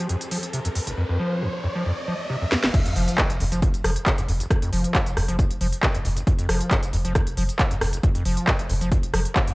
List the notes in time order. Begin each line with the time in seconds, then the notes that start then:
Already playing: F3 C4, riser
0.09 F2, closed hi-hat
0.21 closed hi-hat
0.31 F3, open hi-hat
0.43 closed hi-hat
0.53 C3, closed hi-hat
0.65 F2, closed hi-hat
0.75 F2, open hi-hat
0.87 F1, closed hi-hat
0.98 F2
1.09 F2
1.20 F3
1.42 D#2
1.64 F2
1.75 F3
1.86 F2
2.08 F3
2.30 C3
2.42 F2
2.52 F2, snare
2.64 F1, snare
2.74 F2, kick, closed hi-hat, crash, impact
2.86 F1 F2, closed hi-hat
2.96 F1 F3, open hi-hat
3.08 closed hi-hat
3.18 D#2, kick, cross-stick, clap, closed hi-hat
3.30 F1, closed hi-hat
3.40 F1 F2, open hi-hat
3.52 F1 F3, closed hi-hat
3.62 F2, kick, closed hi-hat
3.74 F1, closed hi-hat
3.84 F1 F3, cross-stick, open hi-hat
3.96 closed hi-hat
4.06 C3, kick, clap, closed hi-hat
4.18 F1 F2, closed hi-hat
4.28 F1 F2, open hi-hat
4.40 F1, closed hi-hat
4.51 F2, kick, cross-stick, closed hi-hat
4.62 F1 F2, closed hi-hat
4.73 F1 F3, open hi-hat
4.84 closed hi-hat
4.95 D#2, kick, clap, closed hi-hat
5.06 F1, closed hi-hat
5.17 F1 F2, cross-stick, open hi-hat
5.28 F1 F3, closed hi-hat
5.39 F2, kick, closed hi-hat
5.50 F1, closed hi-hat
5.61 F1 F3, open hi-hat
5.73 closed hi-hat
5.83 C3, kick, cross-stick, clap, closed hi-hat
5.94 F1 F2, closed hi-hat
6.05 F1 F2, open hi-hat
6.17 F1, closed hi-hat
6.27 F2, kick, closed hi-hat
6.39 F1 F2, closed hi-hat
6.49 F1 F3, cross-stick, open hi-hat
6.61 closed hi-hat
6.71 D#2, kick, clap, closed hi-hat
6.83 F1, closed hi-hat
6.93 F1 F2, open hi-hat
7.05 F1 F3, closed hi-hat
7.15 F2, kick, cross-stick, closed hi-hat
7.27 F1, closed hi-hat
7.37 F1 F3, open hi-hat
7.49 closed hi-hat
7.59 C3, kick, clap, closed hi-hat
7.71 F1 F2, closed hi-hat
7.81 F1 F2, cross-stick, open hi-hat
7.93 F1, closed hi-hat
8.03 F2, kick, closed hi-hat
8.15 F1 F2, closed hi-hat
8.26 F1 F3, open hi-hat
8.37 closed hi-hat
8.48 D#2, kick, cross-stick, clap, closed hi-hat
8.59 F1, closed hi-hat
8.70 F1 F2, open hi-hat
8.81 F1 F3, closed hi-hat
8.92 F2, kick, closed hi-hat
9.03 F1, closed hi-hat
9.14 F1 F3, cross-stick, open hi-hat
9.25 closed hi-hat
9.36 C3, kick, clap, closed hi-hat
9.47 F1 F2, closed hi-hat